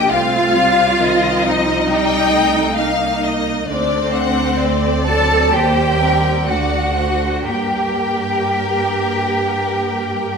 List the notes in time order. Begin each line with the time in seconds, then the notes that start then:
Already playing: A#1 A#3 G4 D#5
0.11 C2 A3 C4 F4 F5
0.56 G3
0.99 D#3 C4 D#5
1.43 F3 D#4 D#5
1.88 G3 D#4 G5
2.32 A3
2.77 A#3 D#4 F5
3.24 D#5
3.69 D2 A3 C4 D4 C5 D5
4.13 D4 F#5
4.61 A3 C4 D5
5.07 F#3 A4 A5
5.53 D#2 G3 A#3 G4 C5 G5
6.00 C4 A#4
6.47 D2 A3 D4 F#4 D5 F#5
6.96 C5
7.45 G2 A#3 G4 A#4 G5